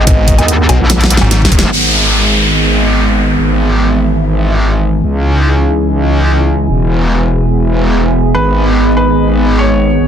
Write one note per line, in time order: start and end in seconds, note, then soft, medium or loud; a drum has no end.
0.00 1.68 D#3 medium
0.00 1.68 G#3 medium
0.00 0.36 B3 loud
0.00 1.71 B3 medium
0.00 1.71 D#4 medium
0.00 0.36 G#4 loud
0.00 1.72 G#4 medium
0.00 2.39 C#5 medium
0.00 0.36 D#5 loud
0.00 1.75 F#5 medium
0.07 0.37 G#1 loud
0.07 kick loud
0.07 closed hi-hat medium
0.28 kick medium
0.28 closed hi-hat medium
0.38 0.67 D#2 loud
0.38 0.50 B3 medium
0.38 0.50 G#4 medium
0.38 0.50 D#5 loud
0.38 closed hi-hat soft
0.38 low woodblock medium
0.48 closed hi-hat medium
0.69 0.78 B1 loud
0.69 closed hi-hat medium
0.69 low woodblock medium
0.80 1.20 A#1 loud
0.90 snare medium
0.90 closed hi-hat medium
1.01 snare medium
1.01 closed hi-hat soft
1.10 closed hi-hat medium
1.17 1.61 G#1 loud
1.17 snare medium
1.17 low woodblock medium
1.31 snare loud
1.31 closed hi-hat medium
1.42 kick medium
1.42 snare loud
1.52 kick loud
1.52 closed hi-hat medium
1.59 1.71 G#1 loud
1.59 snare loud
1.72 3.36 G#1 medium
1.72 3.36 D#3 medium
1.72 5.00 G#3 medium
1.72 5.70 B3 medium
1.72 5.00 B3 medium
1.72 downlifter medium
1.78 5.66 G#4 medium
2.01 10.08 G#5 medium
2.23 3.38 D#5 medium
3.38 5.02 G#1 medium
3.38 5.02 E3 medium
3.52 5.04 E5 medium
5.03 6.67 C#2 medium
5.03 6.67 C#3 medium
5.03 6.67 C#4 medium
5.03 7.36 C#4 medium
5.03 6.67 D#4 medium
5.03 8.31 E4 medium
5.03 6.67 G#4 medium
5.24 7.36 E3 medium
5.58 6.69 D#5 medium
6.69 8.33 E1 medium
6.69 10.08 G#3 medium
6.69 8.33 B3 medium
6.69 10.08 B3 medium
6.98 10.08 G#4 medium
7.18 8.35 E5 medium
8.34 9.98 G#1 medium
8.34 10.08 B3 medium
8.34 9.98 D#4 medium
8.34 8.89 B4 medium
8.43 10.00 D#5 medium
8.97 9.51 B4 medium
9.59 10.08 C#5 medium
10.00 10.08 G#1 medium
10.00 10.08 E4 medium